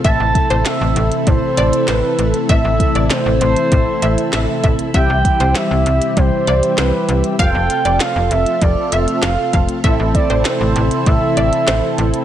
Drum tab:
HH |x-xxx-xxx-xxx-xx|x-xxx-xxx-xxx-xx|x-xxx-xxx-xxx-xx|x-xxx-xxx-xxx-xx|
CP |----x-------x---|----x-------x---|----x-------x---|----x-------x---|
SD |----o-------o---|----o-------o---|----o-------o---|----o-------o---|
BD |o-o-----o-------|o-o-----o-----o-|o-o-----o-------|o-------o-----o-|

HH |x-xxx-xxx-xxx-xx|
CP |----x-------x---|
SD |----o-------o---|
BD |o-o-----o-------|